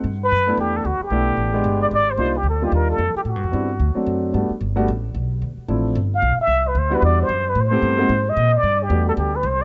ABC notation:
X:1
M:4/4
L:1/8
Q:"Swing" 1/4=224
K:G
V:1 name="Muted trumpet"
z B3 G A F G- | G4- G d d c- | c G A G _B A2 G | F6 z2 |
z8 | z4 z =f2 e- | e B c B d c2 B | c4- c _e2 d- |
d G2 A G B c z |]
V:2 name="Grand piano"
z3 [A,B,DE]3 z2 | [A,B,DE]3 [_A,B,DG]3 z2 | [G,_B,D_E=F] z2 [G,B,DEF]3 z2 | z2 [G,B,CDE] z2 [F,A,CDF]3 |
[G,A,B,DF] z2 [G,A,B,DF] z4 | z2 [=F,A,CDE]2 z4 | z3 [G,B,DEF]3 z2 | z [A,B,CEG]2 [_A,_B,C_EF] z4 |
z2 [G,A,B,DF]3 z3 |]
V:3 name="Upright bass" clef=bass
G,,2 F,,2 E,,2 D,, z | B,,,2 A,,,2 G,,,2 _A,,,2 | C,,2 D,,2 _E,,2 =F,, z | (3A,, G,, E,, G,,2 D,, z F,,2 |
G,, z G,,,2 A,,,2 B,,,2 | D,, z A,,,2 G,,,2 B,,, z | C,,2 D,,2 E,,2 F,,2 | A,,2 G,,2 _A,,2 _B,,2 |
G,,2 E,,2 D,,2 C,,2 |]